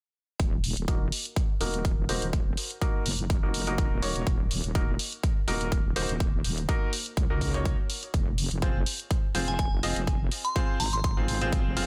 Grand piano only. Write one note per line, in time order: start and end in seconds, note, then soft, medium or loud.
0.88 1.02 A#3 medium
0.88 1.02 D#4 medium
0.88 1.02 F#4 medium
0.88 1.02 A#4 medium
1.61 1.82 A#3 medium
1.61 1.82 D#4 medium
1.61 1.82 F#4 medium
1.61 1.82 A#4 medium
2.09 2.23 A#3 medium
2.09 2.23 D#4 medium
2.09 2.23 F#4 medium
2.09 2.23 C5 loud
2.82 3.03 A#3 medium
2.82 3.03 D#4 medium
2.82 3.03 F#4 medium
2.82 3.03 A#4 loud
3.43 3.63 A#3 medium
3.43 3.63 D#4 medium
3.43 3.63 F#4 medium
3.43 3.63 A#4 medium
3.67 4.00 A#3 medium
3.67 4.00 D#4 medium
3.67 4.00 F#4 medium
3.67 4.00 A#4 medium
4.02 4.24 A#3 medium
4.02 4.24 D#4 medium
4.02 4.24 F#4 medium
4.02 4.24 C#5 medium
4.75 4.89 A#3 medium
4.75 4.89 D#4 medium
4.75 4.89 F#4 medium
4.75 4.89 A#4 medium
5.48 5.69 A#3 medium
5.48 5.69 D#4 medium
5.48 5.69 F#4 medium
5.48 5.69 A#4 medium
5.96 6.10 A#3 medium
5.96 6.10 D#4 medium
5.96 6.10 F#4 medium
5.96 6.10 C5 loud
6.69 6.90 A#3 medium
6.69 6.90 D#4 medium
6.69 6.90 F#4 medium
6.69 6.90 A#4 loud
7.30 7.50 A#3 medium
7.30 7.50 D#4 medium
7.30 7.50 F#4 medium
7.30 7.50 A#4 medium
7.54 7.75 A#3 medium
7.54 7.75 D#4 medium
7.54 7.75 F#4 medium
7.54 7.75 C#5 medium
8.62 8.76 C4 medium
8.62 8.76 F4 medium
8.62 8.76 G#4 medium
8.62 8.76 C5 medium
9.35 9.56 C4 medium
9.35 9.56 F4 medium
9.35 9.56 G#4 medium
9.35 9.56 C5 medium
9.83 9.97 C4 medium
9.83 9.97 F4 medium
9.83 9.97 G#4 medium
9.83 9.97 D#5 loud
10.56 10.77 C4 medium
10.56 10.77 F4 medium
10.56 10.77 G#4 medium
10.56 10.77 C5 loud
11.17 11.37 C4 medium
11.17 11.37 F4 medium
11.17 11.37 G#4 medium
11.17 11.37 C5 medium
11.41 11.74 C4 medium
11.41 11.74 F4 medium
11.41 11.74 G#4 medium
11.41 11.74 C5 medium
11.77 11.86 C4 medium
11.77 11.86 F4 medium
11.77 11.86 G#4 medium
11.77 11.86 F5 medium